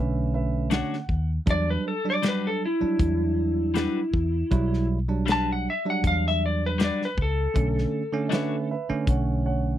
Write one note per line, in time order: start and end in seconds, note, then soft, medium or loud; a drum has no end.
0.00 0.81 B1 medium
0.00 0.99 D3 medium
0.00 0.99 A3 medium
0.00 1.00 C#4 loud
0.00 0.31 B4 medium
0.00 0.33 E5 medium
0.34 0.69 B4 medium
0.34 0.71 E5 medium
0.70 0.95 A3 medium
0.70 0.95 D4 medium
0.70 0.95 F#4 medium
0.70 0.96 C#5 medium
0.70 1.29 F#5 medium
0.70 snare loud
0.70 closed hi-hat medium
0.93 snare soft
1.09 1.38 D#2 medium
1.09 kick medium
1.46 1.76 E2 loud
1.46 1.93 F#3 medium
1.46 1.94 G3 medium
1.46 1.94 D4 medium
1.46 kick loud
1.46 closed hi-hat medium
1.50 1.69 D5 loud
1.70 1.86 B4 medium
1.88 2.06 A4 medium
2.05 2.65 F#3 medium
2.05 2.66 G3 medium
2.05 2.66 D4 medium
2.10 2.25 D5 medium
2.22 2.47 G3 medium
2.22 2.47 D4 medium
2.22 2.48 F#4 medium
2.22 2.48 B4 medium
2.22 snare loud
2.22 closed hi-hat medium
2.29 2.46 B4 medium
2.47 2.62 A4 medium
2.65 4.87 E4 medium
2.81 4.03 F#3 medium
2.81 4.03 G3 medium
2.81 4.04 D4 medium
2.81 muted fingered electric bass stroke soft
2.99 3.86 E2 medium
2.99 kick loud
2.99 closed hi-hat medium
3.74 3.99 G3 medium
3.74 3.99 D4 medium
3.74 3.99 F#4 medium
3.74 4.00 B4 medium
3.74 snare loud
3.74 closed hi-hat medium
4.13 4.42 E2 medium
4.13 kick medium
4.51 5.66 B1 loud
4.51 4.98 F#3 medium
4.51 4.98 G3 medium
4.51 4.98 E4 medium
4.51 kick loud
4.51 closed hi-hat medium
4.73 snare soft
5.09 5.70 F#3 medium
5.09 5.70 G3 medium
5.09 5.70 D4 medium
5.26 5.51 G3 medium
5.26 5.51 D4 medium
5.26 5.51 F#4 medium
5.26 5.52 B4 medium
5.26 snare loud
5.26 closed hi-hat medium
5.32 5.49 A5 medium
5.52 5.67 F#5 medium
5.70 5.88 E5 medium
5.86 7.08 F#3 medium
5.86 7.08 G3 medium
5.86 7.08 D4 medium
5.90 6.05 F#5 medium
6.04 6.90 E2 loud
6.04 6.25 F5 medium
6.04 kick loud
6.04 closed hi-hat medium
6.28 6.43 E5 medium
6.46 6.63 D5 medium
6.66 6.81 B4 medium
6.78 7.03 G3 medium
6.78 7.03 D4 medium
6.78 7.03 F#4 medium
6.78 7.04 B4 medium
6.78 snare loud
6.78 closed hi-hat medium
6.84 7.02 D5 medium
7.02 7.20 B4 medium
7.02 snare soft
7.17 7.46 C#2 medium
7.17 kick medium
7.22 8.68 A4 loud
7.54 7.84 B1 loud
7.54 8.01 D3 medium
7.54 8.02 A3 medium
7.54 8.02 C#4 medium
7.54 kick loud
7.54 closed hi-hat medium
7.78 snare soft
8.13 8.73 D3 medium
8.13 8.74 A3 medium
8.13 8.74 C#4 loud
8.29 8.55 A3 medium
8.29 8.55 D4 medium
8.29 8.55 F#4 medium
8.29 8.67 B4 medium
8.29 8.56 C#5 loud
8.29 8.33 D#5 medium
8.29 closed hi-hat medium
8.33 8.69 E5 medium
8.33 snare loud
8.71 9.06 B4 medium
8.71 9.07 E5 medium
8.89 9.78 D3 medium
8.89 9.78 A3 medium
8.89 9.78 C#4 loud
8.89 muted fingered electric bass stroke soft
9.07 9.78 B1 medium
9.07 9.43 C#5 medium
9.07 9.45 F#5 medium
9.07 kick loud
9.07 closed hi-hat medium
9.46 9.78 C#5 medium
9.46 9.78 F#5 medium